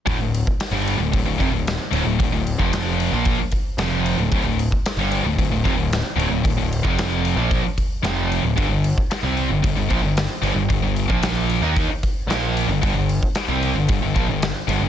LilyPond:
<<
  \new Staff \with { instrumentName = "Distorted electric guitar" } { \clef bass \time 4/4 \key d \minor \tempo 4 = 113 <d, a,>16 <d, a,>8 r8 <g, d g>8 <d, a,>16 <d, a,>16 <d, a,>16 <f, c>16 <d, a,>8 r16 <d, a,>16 <d, a,>16 | <d, a,>16 <d, a,>8 <f, c f>4 <bes, f bes>8 r8. <f, c f>8. <d, a,>16 | <d, a,>16 <d, a,>8 r8 <g, d g>8 <d, a,>16 <d, a,>16 <d, a,>16 <f, c>16 <d, a,>8 r16 <d, a,>16 <d, a,>16 | <d, a,>16 <d, a,>8 <f, c f>4 <bes, f bes>8 r8. <f, c f>8. <d, a,>16 |
<g, d>16 <g, d>8 r8 <c g c'>8 <g, d>16 <g, d>16 <g, d>16 <bes, f>16 <g, d>8 r16 <g, d>16 <g, d>16 | <g, d>16 <g, d>8 <bes, f bes>4 <ees bes ees'>8 r8. <bes, f bes>8. <g, d>16 | <g, d>16 <g, d>8 r8 <c g c'>8 <g, d>16 <g, d>16 <g, d>16 <bes, f>16 <g, d>8 r16 <g, d>16 <g, d>16 | }
  \new Staff \with { instrumentName = "Overdriven electric guitar" } { \clef bass \time 4/4 \key d \minor <d, a,>16 <d, a,>8 r8 <g, d g>8 <d, a,>16 <d, a,>16 <d, a,>16 <f, c>16 <d, a,>8 r16 <d, a,>16 <d, a,>16 | <d, a,>16 <d, a,>8 <f, c f>4 <bes, f bes>8 r8. <f, c f>8. <d, a,>16 | <d, a,>16 <d, a,>8 r8 <g, d g>8 <d, a,>16 <d, a,>16 <d, a,>16 <f, c>16 <d, a,>8 r16 <d, a,>16 <d, a,>16 | <d, a,>16 <d, a,>8 <f, c f>4 <bes, f bes>8 r8. <f, c f>8. <d, a,>16 |
<g, d>16 <g, d>8 r8 <c g c'>8 <g, d>16 <g, d>16 <g, d>16 <bes, f>16 <g, d>8 r16 <g, d>16 <g, d>16 | <g, d>16 <g, d>8 <bes, f bes>4 <ees bes ees'>8 r8. <bes, f bes>8. <g, d>16 | <g, d>16 <g, d>8 r8 <c g c'>8 <g, d>16 <g, d>16 <g, d>16 <bes, f>16 <g, d>8 r16 <g, d>16 <g, d>16 | }
  \new Staff \with { instrumentName = "Picked electric bass" } { \clef bass \time 4/4 \key d \minor d,,16 d,,8 r8 g,,8 d,,16 d,,16 d,,16 f,,16 d,,8 r16 d,,16 d,,16 | d,,16 d,,8 f,,4 bes,,8 r8. f,,8. d,,16 | d,,16 d,,8 r8 g,,8 d,,16 d,,16 d,,16 f,,16 d,,8 r16 d,,16 d,,16 | d,,16 d,,8 f,,4 bes,,8 r8. f,,8. d,,16 |
g,,16 g,,8 r8 c,8 g,,16 g,,16 g,,16 bes,,16 g,,8 r16 g,,16 g,,16 | g,,16 g,,8 bes,,4 ees,8 r8. bes,,8. g,,16 | g,,16 g,,8 r8 c,8 g,,16 g,,16 g,,16 bes,,16 g,,8 r16 g,,16 g,,16 | }
  \new DrumStaff \with { instrumentName = "Drums" } \drummode { \time 4/4 <hho bd>8 hho16 bd16 <hho sn>8 hho8 <hho bd>8 <hho bd>8 <hho sn>8 hho8 | <hho bd>8 hho16 bd16 <hho sn>8 hho8 <hho bd>8 <hho bd>8 <hho sn>8 hho8 | <hho bd>8 hho16 bd16 <hho sn>8 hho8 <hho bd>8 <hho bd>8 <hho sn>8 hho8 | <hho bd>8 hho16 bd16 <hho sn>8 hho8 <hho bd>8 <hho bd>8 <hho sn>8 hho8 |
<hho bd>8 hho16 bd16 <hho sn>8 hho8 <hho bd>8 <hho bd>8 <hho sn>8 hho8 | <hho bd>8 hho16 bd16 <hho sn>8 hho8 <hho bd>8 <hho bd>8 <hho sn>8 hho8 | <hho bd>8 hho16 bd16 <hho sn>8 hho8 <hho bd>8 <hho bd>8 <hho sn>8 hho8 | }
>>